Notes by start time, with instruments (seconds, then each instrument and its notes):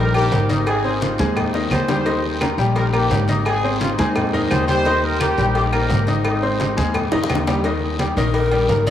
Already playing: upright bass A#1, horn section D#4 G4 A#4
0.14 horn section A#3 D#4 G4, upright piano A#3 A#4 A#5, high conga, low agogo, claves
0.32 upright bass G#1, cowbell, high conga, low timbale, short guiro
0.49 upright piano D#4 D#5 D#6, high conga, low agogo, short guiro
0.66 horn section C4 D#4 G#4, cowbell, high conga, low agogo, long guiro, claves
0.85 upright piano C4 C5 C6, high conga
1.01 horn section F4, cowbell, high conga, low timbale, low agogo, short guiro
1.18 upright bass D#2, upright piano G#3 G#4 G#5, horn section G#3 C4 D#4, high conga, short guiro
1.36 cowbell, high conga, low conga, low agogo, long guiro, claves
1.54 upright piano D#3 D#4 D#5, high bongo, high conga
1.71 upright bass D#2, horn section C5, cowbell, high conga, low timbale, low agogo, short guiro, claves
1.88 upright piano G3 G4 G5, horn section D#4 G4 C5, cowbell, low bongo, high conga, low agogo, short guiro
2.05 upright piano D#3 D#4 D#5, cowbell, high conga, low agogo, long guiro
2.24 high conga
2.41 upright piano A#3 A#4 A#5, cowbell, high conga, low timbale, low agogo, short guiro, claves
2.58 upright bass A#1, upright piano G3 G4 G5, short guiro
2.75 horn section D#4 G4 A#4, cowbell, high conga, low agogo, long guiro
2.93 upright piano A#3 A#4 A#5, horn section A#3 D#4 G4, high conga, low agogo, claves
3.11 upright bass G#1, cowbell, high conga, low timbale, short guiro
3.28 upright piano D#4 D#5 D#6, high conga, low agogo, short guiro
3.45 horn section C4 D#4 G#4, cowbell, high conga, low agogo, long guiro, claves
3.64 upright piano C4 C5 C6, high conga
3.81 horn section F4, cowbell, high conga, low timbale, low agogo, short guiro
3.98 upright bass D#2, horn section G#3 C4 D#4, upright piano G#3 G#4 G#5, high conga, short guiro
4.16 cowbell, high conga, low conga, low agogo, long guiro, claves
4.33 upright piano D#3 D#4 D#5, high conga, low conga
4.49 upright bass D#2, horn section C5, cowbell, high conga, low timbale, low agogo, short guiro, claves
4.67 upright piano G3 G4 G5, horn section D#4 G4 C5, cowbell, high conga, low agogo, short guiro
4.85 upright piano D#3 D#4 D#5, cowbell, high conga, low agogo, long guiro
5.03 horn section A#4, high conga
5.20 upright piano A#3 A#4 A#5, horn section A#3 D#4 G4, cowbell, high conga, low timbale, low agogo, short guiro, claves
5.38 upright bass A#1, upright piano G3 G4 G5, short guiro
5.55 horn section A#3 D#4 G4, cowbell, high conga, low agogo, long guiro
5.72 upright piano A#3 A#4 A#5, horn section D#4 G4 A#4, high conga, low agogo, claves
5.90 upright bass G#1, cowbell, high conga, low timbale, short guiro
6.06 horn section G#3 C4 D#4, upright piano D#4 D#5 D#6, high conga, low agogo, short guiro
6.25 cowbell, high conga, low agogo, long guiro, claves
6.43 upright piano C4 C5 C6, high conga
6.60 cowbell, high conga, low timbale, low agogo, short guiro
6.77 upright bass D#2, upright piano G#3 G#4 G#5, high conga, short guiro
6.94 cowbell, high conga, low conga, low agogo, long guiro, claves
7.12 upright bass D2, upright piano D#3 D#4 D#5, high bongo, high conga, low conga, high timbale
7.24 high bongo
7.30 upright bass D#2, cowbell, high conga, low timbale, low agogo, short guiro, claves
7.35 low bongo
7.47 upright piano G3 G4 G5, cowbell, low bongo, high conga, low timbale, low agogo, short guiro
7.64 upright piano D#3 D#4 D#5, cowbell, high conga, low agogo, long guiro
7.82 high conga
7.99 upright piano G3 G4 G5, cowbell, high conga, low timbale, low agogo, short guiro
8.17 upright bass A#1, upright piano D#3 D#4 D#5, pan flute A#4, short guiro
8.33 pan flute A#4, cowbell, high conga, low agogo, long guiro
8.51 upright piano G3 G4 G5, high conga, low agogo
8.69 upright bass G#1, upright piano A#3 A#4 A#5, cowbell, high conga, low timbale, short guiro
8.87 pan flute D5, high conga, low agogo, short guiro